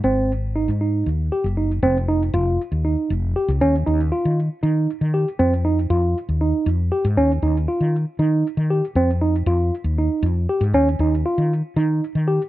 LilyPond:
<<
  \new Staff \with { instrumentName = "Tine electric piano" } { \time 7/8 \key f \minor \tempo 4 = 118 c'4 ees'8 ees'4 g'8 ees'8 | c'8 ees'8 f'4 ees'4 g'8 | des'8 ees'8 f'4 ees'4 g'8 | c'8 ees'8 f'4 ees'4 g'8 |
des'8 ees'8 f'4 ees'4 g'8 | c'8 ees'8 f'4 ees'4 g'8 | des'8 ees'8 f'4 ees'4 g'8 | }
  \new Staff \with { instrumentName = "Fretless electric bass" } { \clef bass \time 7/8 \key f \minor aes,,4~ aes,,16 aes,8. ees,8 r16 ges,,8. | f,,4 f,,8 r16 ees,8 r16 f,,8 r16 des,16 | ees,8 ees,8 r16 ees8 r16 ees8 r16 ees8 r16 | f,4 f,8 r16 ees,8 r16 f,8 r16 aes,16 |
ees,8 ees,8 r16 ees8 r16 ees8 r16 ees8 r16 | f,4 f,8 r16 ees,8 r16 f,8 r16 aes,16 | ees,8 ees,8 r16 ees8 r16 ees8 r16 ees8 r16 | }
>>